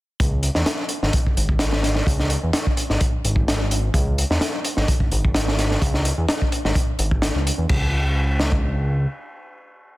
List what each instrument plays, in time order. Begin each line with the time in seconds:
0.20 analog synth bass C#2, kick, closed hi-hat
0.43 closed hi-hat
0.55 analog synth bass E2, snare
0.66 snare, closed hi-hat
0.89 closed hi-hat
1.03 analog synth bass G#1, snare
1.13 kick, closed hi-hat
1.27 kick
1.37 analog synth bass G#1, closed hi-hat
1.49 kick
1.59 snare, closed hi-hat
1.72 snare
1.83 snare, closed hi-hat
1.95 snare
2.07 analog synth bass C#2, kick, closed hi-hat
2.19 snare
2.30 closed hi-hat
2.43 analog synth bass E2
2.53 snare, closed hi-hat
2.67 kick
2.77 closed hi-hat
2.90 analog synth bass G#1, snare
3.01 kick, closed hi-hat
3.25 analog synth bass G#1, closed hi-hat
3.36 kick
3.48 snare, closed hi-hat
3.71 closed hi-hat
3.94 analog synth bass C#2, kick, closed hi-hat
4.18 closed hi-hat
4.30 analog synth bass E2, snare
4.41 snare, closed hi-hat
4.64 closed hi-hat
4.77 analog synth bass G#1, snare
4.88 kick, closed hi-hat
5.00 kick
5.11 analog synth bass G#1, closed hi-hat
5.25 kick
5.34 snare, closed hi-hat
5.48 snare
5.59 snare, closed hi-hat
5.71 snare
5.82 analog synth bass C#2, kick, closed hi-hat
5.94 snare
6.05 closed hi-hat
6.18 analog synth bass E2
6.29 snare, closed hi-hat
6.42 kick
6.52 closed hi-hat
6.65 analog synth bass G#1, snare
6.75 kick, closed hi-hat
6.99 analog synth bass G#1, closed hi-hat
7.11 kick
7.22 snare, closed hi-hat
7.35 analog synth bass C#2
7.47 closed hi-hat
7.58 analog synth bass E2
7.69 analog synth bass C#2, kick, crash
8.40 snare
8.52 kick